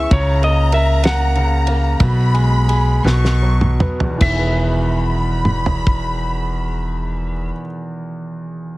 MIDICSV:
0, 0, Header, 1, 6, 480
1, 0, Start_track
1, 0, Key_signature, 4, "major"
1, 0, Tempo, 628272
1, 86, Time_signature, 6, 3, 24, 8
1, 1529, Tempo, 708383
1, 2489, Tempo, 792602
1, 2969, Tempo, 827586
1, 5617, End_track
2, 0, Start_track
2, 0, Title_t, "Violin section"
2, 0, Program_c, 0, 48
2, 80, Note_on_c, 0, 82, 108
2, 1526, Note_off_c, 0, 82, 0
2, 1537, Note_on_c, 0, 83, 100
2, 2235, Note_on_c, 0, 85, 86
2, 2241, Note_off_c, 0, 83, 0
2, 2723, Note_off_c, 0, 85, 0
2, 2972, Note_on_c, 0, 83, 82
2, 4872, Note_off_c, 0, 83, 0
2, 5617, End_track
3, 0, Start_track
3, 0, Title_t, "Electric slide guitar"
3, 0, Program_c, 1, 29
3, 0, Note_on_c, 1, 76, 87
3, 98, Note_on_c, 1, 73, 92
3, 99, Note_off_c, 1, 76, 0
3, 331, Note_off_c, 1, 73, 0
3, 335, Note_on_c, 1, 75, 91
3, 562, Note_off_c, 1, 75, 0
3, 565, Note_on_c, 1, 76, 87
3, 781, Note_off_c, 1, 76, 0
3, 804, Note_on_c, 1, 78, 86
3, 2468, Note_off_c, 1, 78, 0
3, 2975, Note_on_c, 1, 76, 84
3, 4875, Note_off_c, 1, 76, 0
3, 5617, End_track
4, 0, Start_track
4, 0, Title_t, "Grand piano"
4, 0, Program_c, 2, 0
4, 0, Control_c, 2, 64, 127
4, 0, Note_on_c, 2, 49, 66
4, 0, Note_on_c, 2, 56, 47
4, 0, Note_on_c, 2, 59, 56
4, 0, Note_on_c, 2, 64, 55
4, 0, Note_on_c, 2, 68, 60
4, 82, Note_off_c, 2, 64, 0
4, 90, Note_off_c, 2, 49, 0
4, 90, Note_on_c, 2, 49, 70
4, 95, Control_c, 2, 64, 0
4, 97, Note_off_c, 2, 56, 0
4, 99, Note_off_c, 2, 68, 0
4, 100, Note_off_c, 2, 59, 0
4, 223, Control_c, 2, 64, 127
4, 324, Note_on_c, 2, 58, 48
4, 556, Note_on_c, 2, 70, 57
4, 782, Note_off_c, 2, 58, 0
4, 793, Note_on_c, 2, 58, 60
4, 1026, Note_off_c, 2, 49, 0
4, 1037, Note_on_c, 2, 49, 57
4, 1272, Note_off_c, 2, 58, 0
4, 1283, Note_on_c, 2, 58, 55
4, 1501, Note_off_c, 2, 70, 0
4, 1517, Note_off_c, 2, 49, 0
4, 1524, Note_off_c, 2, 58, 0
4, 1529, Note_on_c, 2, 47, 68
4, 1537, Control_c, 2, 64, 0
4, 1649, Control_c, 2, 64, 127
4, 1758, Note_on_c, 2, 56, 53
4, 1992, Note_on_c, 2, 68, 55
4, 2216, Note_off_c, 2, 47, 0
4, 2222, Note_off_c, 2, 56, 0
4, 2229, Note_off_c, 2, 68, 0
4, 2240, Note_on_c, 2, 47, 74
4, 2245, Control_c, 2, 64, 0
4, 2371, Control_c, 2, 64, 127
4, 2492, Note_on_c, 2, 54, 51
4, 2727, Note_on_c, 2, 59, 51
4, 2864, Note_on_c, 2, 40, 55
4, 2896, Note_off_c, 2, 47, 0
4, 2905, Note_on_c, 2, 47, 46
4, 2948, Note_on_c, 2, 52, 50
4, 2956, Note_off_c, 2, 54, 0
4, 2964, Note_off_c, 2, 59, 0
4, 2975, Control_c, 2, 64, 0
4, 2989, Note_on_c, 2, 51, 50
4, 3033, Note_on_c, 2, 68, 49
4, 3074, Note_on_c, 2, 71, 57
4, 3078, Control_c, 2, 64, 127
4, 4768, Note_off_c, 2, 40, 0
4, 4807, Note_off_c, 2, 47, 0
4, 4849, Note_off_c, 2, 52, 0
4, 4889, Note_off_c, 2, 51, 0
4, 4933, Note_off_c, 2, 68, 0
4, 4974, Note_off_c, 2, 71, 0
4, 5617, End_track
5, 0, Start_track
5, 0, Title_t, "Upright bass"
5, 0, Program_c, 3, 32
5, 85, Note_on_c, 3, 37, 106
5, 1498, Note_off_c, 3, 37, 0
5, 1530, Note_on_c, 3, 35, 90
5, 2210, Note_off_c, 3, 35, 0
5, 2236, Note_on_c, 3, 35, 99
5, 2699, Note_off_c, 3, 35, 0
5, 2968, Note_on_c, 3, 28, 92
5, 4868, Note_off_c, 3, 28, 0
5, 5617, End_track
6, 0, Start_track
6, 0, Title_t, "Drums"
6, 85, Note_on_c, 9, 36, 106
6, 85, Note_on_c, 9, 51, 69
6, 161, Note_off_c, 9, 51, 0
6, 162, Note_off_c, 9, 36, 0
6, 327, Note_on_c, 9, 51, 43
6, 404, Note_off_c, 9, 51, 0
6, 552, Note_on_c, 9, 51, 61
6, 628, Note_off_c, 9, 51, 0
6, 791, Note_on_c, 9, 51, 85
6, 806, Note_on_c, 9, 38, 106
6, 868, Note_off_c, 9, 51, 0
6, 882, Note_off_c, 9, 38, 0
6, 1035, Note_on_c, 9, 51, 37
6, 1112, Note_off_c, 9, 51, 0
6, 1275, Note_on_c, 9, 51, 63
6, 1351, Note_off_c, 9, 51, 0
6, 1528, Note_on_c, 9, 51, 72
6, 1529, Note_on_c, 9, 36, 111
6, 1596, Note_off_c, 9, 51, 0
6, 1597, Note_off_c, 9, 36, 0
6, 1762, Note_on_c, 9, 51, 43
6, 1830, Note_off_c, 9, 51, 0
6, 1996, Note_on_c, 9, 51, 56
6, 2063, Note_off_c, 9, 51, 0
6, 2250, Note_on_c, 9, 38, 61
6, 2317, Note_off_c, 9, 38, 0
6, 2373, Note_on_c, 9, 38, 52
6, 2441, Note_off_c, 9, 38, 0
6, 2607, Note_on_c, 9, 47, 62
6, 2667, Note_off_c, 9, 47, 0
6, 2722, Note_on_c, 9, 45, 99
6, 2782, Note_off_c, 9, 45, 0
6, 2843, Note_on_c, 9, 43, 87
6, 2903, Note_off_c, 9, 43, 0
6, 2966, Note_on_c, 9, 49, 83
6, 2969, Note_on_c, 9, 36, 103
6, 3024, Note_off_c, 9, 49, 0
6, 3027, Note_off_c, 9, 36, 0
6, 3688, Note_on_c, 9, 47, 60
6, 3746, Note_off_c, 9, 47, 0
6, 3810, Note_on_c, 9, 43, 72
6, 3868, Note_off_c, 9, 43, 0
6, 3930, Note_on_c, 9, 36, 81
6, 3988, Note_off_c, 9, 36, 0
6, 5617, End_track
0, 0, End_of_file